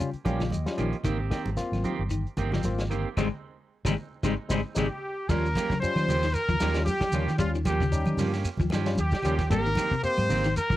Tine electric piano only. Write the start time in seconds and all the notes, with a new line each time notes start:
0.25 G3 C#4 G4 F5
0.52 D#5
0.66 G3 C#4 F4
1.30 A#3 C4 G4
1.57 A#3 C4 F4
2.65 A#3 C4 F4
3.18 G#3 C4 D#4
3.85 G#3 C4 D#4
4.24 G#3 C4 D#4
4.49 G#3 C4 D#4
4.75 G#3 C4 D#4
5.29 G3 C#4 F4
5.82 G3 C#4 F4
6.75 G3 C#4 F4
7.14 G3 C#4 F4
7.38 G3 C#4 F4
7.92 G3 C#4 D#4
8.86 G3 C#4 F4
9.24 G3 C#4 G4
9.50 A#3 C4 G4
10.03 A#3 C4 G4